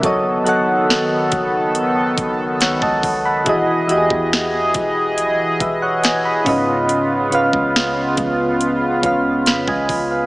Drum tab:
HH |x-x---x-x-x-x-o-|x-x---x-x-x-x-o-|x-x---x-x-x-x-o-|
SD |----o-------o---|----o-------o---|----o-------o---|
BD |o-----o---o--oo-|o--o--o---o---o-|---o--o---o--oo-|